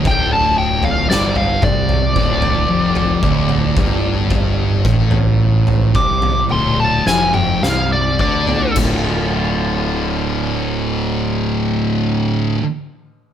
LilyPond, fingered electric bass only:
\new Staff \with { instrumentName = "Fingered electric bass" } { \clef bass \time 4/4 \key d \minor \tempo 4 = 54 d,,4 g,,8 c,8 d,,8 f,,8 d,,8 g,,8~ | g,,8 a,,4 c,8 d,,8 f,,8 c,8 d,8 | d,,1 | }